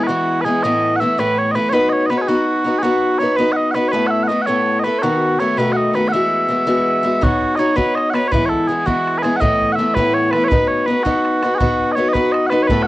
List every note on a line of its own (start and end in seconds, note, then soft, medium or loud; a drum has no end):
0.04 0.41 F#4 medium
0.04 0.07 B4 medium
0.09 0.44 E3 medium
0.09 0.45 G#3 medium
0.09 0.47 B3 medium
0.09 0.46 E4 medium
0.41 0.63 E3 medium
0.41 0.63 G#4 medium
0.41 0.45 B4 medium
0.46 0.63 G#3 medium
0.46 0.64 B3 medium
0.46 0.64 E4 medium
0.63 1.00 A2 medium
0.63 0.99 E3 medium
0.63 1.01 A3 medium
0.63 1.03 B3 medium
0.63 1.01 E4 medium
0.63 0.96 D#5 loud
0.96 1.00 F#5 loud
1.00 1.18 E3 medium
1.00 1.18 A3 medium
1.00 1.19 B3 medium
1.00 1.19 E4 medium
1.00 1.19 E5 loud
1.18 1.55 A2 medium
1.18 1.54 E3 medium
1.18 1.54 A3 medium
1.18 1.56 B3 medium
1.18 1.56 E4 medium
1.18 1.38 B4 loud
1.38 1.51 C#5 medium
1.51 1.72 E3 soft
1.51 1.69 B4 medium
1.51 1.55 D#5 medium
1.55 1.73 A3 medium
1.55 1.71 B3 medium
1.55 1.74 E4 medium
1.69 2.09 B3 medium
1.69 2.10 D#4 medium
1.69 1.89 B4 loud
1.69 1.73 C#5 loud
1.74 2.10 F#4 medium
1.74 2.12 B4 medium
1.89 2.06 C#5 medium
1.89 1.93 D#5 medium
2.06 2.27 B3 medium
2.06 2.18 B4 medium
2.06 2.10 D#5 medium
2.11 2.28 D#4 medium
2.11 2.28 F#4 medium
2.11 2.28 B4 medium
2.18 2.28 G#4 medium
2.18 2.21 C#5 medium
2.28 2.64 B3 medium
2.28 2.65 D#4 medium
2.28 2.79 F#4 medium
2.28 2.66 F#4 medium
2.28 2.67 B4 medium
2.64 2.82 B3 medium
2.64 2.83 D#4 medium
2.64 2.83 F#4 medium
2.64 2.84 B4 medium
2.79 3.19 F#4 medium
2.79 2.82 G#4 medium
2.83 3.20 B3 medium
2.83 3.20 D#4 medium
2.83 3.21 F#4 medium
2.83 3.23 B4 medium
3.19 3.37 B3 medium
3.19 3.38 D#4 medium
3.19 3.38 F#4 medium
3.19 3.36 C#5 medium
3.23 3.40 B4 medium
3.36 3.74 B3 medium
3.36 3.74 D#4 medium
3.36 3.75 F#4 medium
3.36 3.52 B4 loud
3.41 3.77 B4 medium
3.52 3.56 F#5 medium
3.56 3.71 D#5 medium
3.71 3.92 B3 medium
3.71 3.88 B4 medium
3.71 3.75 F#5 medium
3.76 3.93 D#4 medium
3.76 3.94 F#4 medium
3.76 3.94 B4 medium
3.88 4.07 B4 loud
3.88 3.91 C#5 loud
3.93 4.30 A2 medium
3.93 4.28 A3 medium
3.93 4.29 B3 medium
3.93 4.30 E4 medium
3.93 4.30 A4 medium
4.07 4.23 E5 medium
4.07 4.11 F#5 medium
4.23 4.28 F#5 medium
4.28 4.47 A3 medium
4.28 4.47 B3 medium
4.28 4.48 E4 medium
4.28 4.42 D#5 medium
4.32 4.48 A4 medium
4.42 4.46 F#5 medium
4.46 4.85 A2 medium
4.46 4.83 A3 medium
4.46 4.85 B3 medium
4.46 4.85 E4 medium
4.46 4.86 A4 medium
4.46 4.80 C#5 medium
4.80 4.84 D#5 medium
4.84 5.02 A3 medium
4.84 5.03 B3 medium
4.84 5.03 E4 medium
4.84 5.04 A4 medium
4.84 4.99 B4 medium
4.99 5.40 F#4 medium
4.99 5.02 C#5 medium
5.03 5.40 B2 medium
5.03 5.38 D#3 medium
5.03 5.40 A3 medium
5.03 5.40 B3 medium
5.03 5.42 F#4 medium
5.40 5.57 D#3 medium
5.40 5.59 A3 medium
5.40 5.58 B3 medium
5.40 5.59 F#4 medium
5.40 5.58 C#5 medium
5.57 5.95 B2 medium
5.57 5.92 D#3 medium
5.57 5.95 A3 medium
5.57 5.95 B3 medium
5.57 5.97 F#4 medium
5.57 5.73 B4 medium
5.73 5.77 F#5 medium
5.77 5.95 D#5 medium
5.94 6.12 D#3 medium
5.94 6.13 A3 medium
5.94 6.13 B3 medium
5.94 6.14 F#4 medium
5.94 6.08 B4 medium
6.08 6.12 F#5 loud
6.12 6.47 E3 medium
6.12 6.49 G#3 medium
6.12 6.51 B3 medium
6.12 6.51 F#4 medium
6.12 7.23 E5 loud
6.49 6.66 E3 medium
6.49 6.66 G#3 medium
6.49 6.67 B3 medium
6.49 6.67 F#4 medium
6.67 7.02 E3 medium
6.67 7.03 G#3 medium
6.67 7.04 B3 medium
6.67 7.05 F#4 medium
7.03 7.21 E3 medium
7.03 7.22 G#3 medium
7.03 7.20 B3 medium
7.03 7.22 F#4 medium
7.21 7.57 B3 medium
7.21 7.58 D#4 medium
7.21 7.59 F#4 medium
7.21 7.56 F#4 medium
7.21 7.59 C#5 medium
7.21 bodhran medium
7.42 bodhran soft
7.56 7.74 B3 medium
7.56 7.75 D#4 medium
7.56 7.76 C#5 medium
7.56 7.59 D#5 medium
7.60 7.76 F#4 medium
7.60 7.77 C#5 medium
7.76 8.13 B3 medium
7.76 8.13 D#4 medium
7.76 8.14 F#4 medium
7.76 7.95 B4 medium
7.76 8.15 C#5 medium
7.76 bodhran medium
7.95 8.10 D#5 medium
7.95 bodhran medium
8.10 8.31 B3 medium
8.10 8.27 B4 medium
8.10 8.14 F#5 medium
8.15 8.32 D#4 medium
8.15 8.33 F#4 medium
8.15 8.33 C#5 medium
8.15 bodhran medium
8.27 8.67 E3 medium
8.27 8.45 B4 loud
8.27 8.31 C#5 loud
8.32 8.69 G#3 medium
8.32 8.70 B3 medium
8.32 8.70 E4 medium
8.32 bodhran medium
8.45 8.68 A4 medium
8.45 8.49 C#5 medium
8.52 bodhran soft
8.68 8.84 E3 medium
8.68 8.86 G#3 medium
8.68 8.86 B3 medium
8.68 8.86 G#4 medium
8.72 8.87 E4 medium
8.86 9.22 E3 medium
8.86 9.23 G#3 medium
8.86 9.24 B3 medium
8.86 9.24 E4 medium
8.86 9.18 F#4 medium
8.86 bodhran medium
9.07 bodhran soft
9.18 9.23 B4 medium
9.23 9.40 E3 medium
9.23 9.41 G#3 medium
9.23 9.40 B3 medium
9.23 9.41 E4 medium
9.23 9.36 G#4 medium
9.23 bodhran medium
9.36 9.78 A2 medium
9.36 9.41 F#5 loud
9.41 9.77 E3 medium
9.41 9.78 A3 medium
9.41 9.80 B3 medium
9.41 9.79 E4 medium
9.41 9.73 D#5 loud
9.41 bodhran medium
9.62 bodhran soft
9.73 9.94 E5 medium
9.73 9.76 F#5 medium
9.78 9.96 E3 medium
9.78 9.97 A3 medium
9.78 9.97 B3 medium
9.78 9.98 E4 medium
9.94 10.33 A2 medium
9.94 10.32 E3 medium
9.94 10.33 A3 medium
9.94 10.34 B3 medium
9.94 10.14 B4 loud
9.94 bodhran medium
9.99 10.34 E4 medium
10.14 10.31 C#5 medium
10.31 10.50 E3 medium
10.31 10.51 A3 medium
10.31 10.44 B4 loud
10.31 bodhran medium
10.35 10.50 B3 medium
10.35 10.52 E4 medium
10.44 10.68 B4 medium
10.44 10.48 C#5 medium
10.51 10.87 B3 medium
10.51 10.87 D#4 medium
10.51 10.89 F#4 medium
10.51 10.91 B4 medium
10.51 bodhran medium
10.68 10.86 C#5 medium
10.86 11.04 B3 medium
10.86 11.04 D#4 medium
10.86 11.03 B4 medium
10.90 11.05 F#4 medium
10.90 11.05 B4 medium
11.03 11.42 B3 medium
11.03 11.43 D#4 medium
11.03 11.55 F#4 medium
11.03 11.43 F#4 medium
11.03 11.45 B4 medium
11.03 bodhran medium
11.25 bodhran soft
11.43 11.59 B3 medium
11.43 11.59 D#4 medium
11.43 11.60 F#4 medium
11.43 11.61 B4 medium
11.43 bodhran medium
11.55 11.92 F#4 medium
11.55 11.58 G#4 medium
11.60 11.96 B3 medium
11.60 11.97 D#4 medium
11.60 11.97 F#4 medium
11.60 11.99 B4 medium
11.60 bodhran medium
11.79 bodhran soft
11.92 12.09 C#5 medium
11.92 11.96 D#5 medium
11.96 12.13 B3 medium
11.96 12.14 D#4 medium
11.96 12.15 F#4 medium
11.96 12.15 B4 medium
12.09 12.13 D#5 loud
12.13 12.51 B3 medium
12.13 12.51 D#4 medium
12.13 12.52 F#4 medium
12.13 12.32 B4 loud
12.13 12.53 B4 medium
12.13 bodhran medium
12.32 12.47 D#5 medium
12.32 bodhran medium
12.47 12.63 B4 medium
12.47 12.50 F#5 medium
12.51 12.69 B3 soft
12.51 12.70 D#4 medium
12.51 12.70 F#4 medium
12.51 12.71 B4 medium
12.51 bodhran medium
12.63 12.67 C#5 medium
12.67 12.87 A2 medium
12.67 12.87 A3 medium
12.67 12.87 B3 medium
12.67 12.83 B4 medium
12.67 bodhran medium
12.72 12.87 E4 medium
12.72 12.87 A4 medium
12.83 12.86 F#5 medium